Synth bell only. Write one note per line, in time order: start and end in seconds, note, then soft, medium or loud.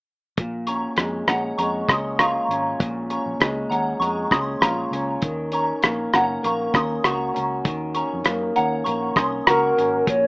0.67 0.84 A#5 soft
0.67 0.83 C#6 medium
1.28 1.44 F#5 soft
1.28 1.44 A#5 medium
1.58 1.87 A#5 medium
1.58 1.87 C#6 medium
1.89 2.05 C6 medium
1.89 2.05 D#6 medium
2.19 2.64 A#5 medium
2.19 2.63 C#6 medium
3.10 3.26 A#5 soft
3.10 3.26 C#6 medium
3.70 3.87 F#5 soft
3.70 3.86 A#5 medium
4.00 4.30 A#5 medium
4.00 4.29 C#6 medium
4.31 4.47 C6 medium
4.31 4.47 D#6 medium
4.61 5.06 A#5 medium
4.61 5.05 C#6 medium
5.53 5.69 A#5 soft
5.53 5.69 C#6 medium
6.14 6.30 F#5 medium
6.14 6.30 A#5 medium
6.45 6.73 A#5 medium
6.45 6.73 C#6 medium
6.76 6.91 C6 medium
6.76 6.91 D#6 medium
7.05 7.49 A#5 medium
7.05 7.49 C#6 medium
7.94 8.12 A#5 soft
7.94 8.11 C#6 medium
8.56 8.72 F#5 medium
8.56 8.72 A#5 medium
8.84 9.14 A#5 medium
8.84 9.14 C#6 medium
9.16 9.32 C6 soft
9.16 9.32 D#6 medium
9.46 9.91 A#5 medium
9.46 9.91 C#6 medium